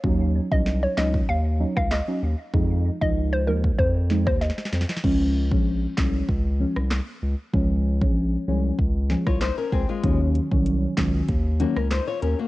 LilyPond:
<<
  \new Staff \with { instrumentName = "Synth pluck" } { \time 4/4 \key des \major \tempo 4 = 96 r8. ees''16 r16 des''16 ees''16 r16 f''16 r8 f''16 ees''8. r16 | r8. ees''16 r16 c''16 bes'16 r16 c''16 r8 c''16 ees''8. r16 | r1 | r1 |
r1 | }
  \new Staff \with { instrumentName = "Nylon-string guitar" } { \time 4/4 \key des \major r1 | r1 | r1 | r2 r8. <f' des''>16 <ees' c''>16 <des' bes'>16 <c' aes'>16 <aes f'>16~ |
<aes f'>16 r2 r16 <bes ges'>16 <des' bes'>16 <ees' c''>16 <f' des''>16 <des' bes'>16 <bes ges'>16 | }
  \new Staff \with { instrumentName = "Synth stab" } { \clef bass \time 4/4 \key des \major <ges des' ees'>8. <ges des' ees'>8. <ges des' ees'>8 r8 <ges des' ees'>16 r8 <ges des' ees'>16 r8 | <f aes ees'>8. <f aes ees'>8. <f aes ees'>8 r8 <f aes ees'>16 r4 r16 | <f aes des'>8. <f aes des'>8. <f aes des'>8 r8 <f aes des'>16 r4 r16 | <f aes des'>8. <f aes des'>8. <f aes des'>8 r8 <f aes des'>16 r4 r16 |
<ees ges des'>8. <ees ges des'>8. <ees ges des'>8 r8 <ees ges des'>16 r4 r16 | }
  \new Staff \with { instrumentName = "Sub bass" } { \clef bass \time 4/4 \key des \major ees,8. c,8. des,8 ees,8. des,8 r16 ees,16 r16 | f,8. des,8. ees,8 f,8. ees,8 r16 f,16 r16 | des,8. bes,,8. c,8 des,8. c,8 r16 des,16 r16 | des,8. bes,,8. c,8 des,8. c,8 r16 des,16 r16 |
ees,8. c,8. des,8 ees,8. des,8 r16 ees,16 r16 | }
  \new DrumStaff \with { instrumentName = "Drums" } \drummode { \time 4/4 bd8. bd16 sn8 <hc sn>16 bd16 r8. <bd ss>16 <hc sn>4 | bd8. bd16 r8. bd16 bd8 sn16 <bd ss>16 sn32 sn32 sn32 sn32 sn32 sn32 sn32 sn32 | <cymc bd>8. bd16 r8 <hc bd sn>8 bd8. ss16 <hc sn>4 | bd8. bd16 r4 bd8 sn16 <bd ss>16 <hc sn>8 bd8 |
<hh bd>8 hh16 bd16 hh8 <hc hh bd sn>8 <hh bd>8 hh16 ss16 <hc hh sn>8 hh8 | }
>>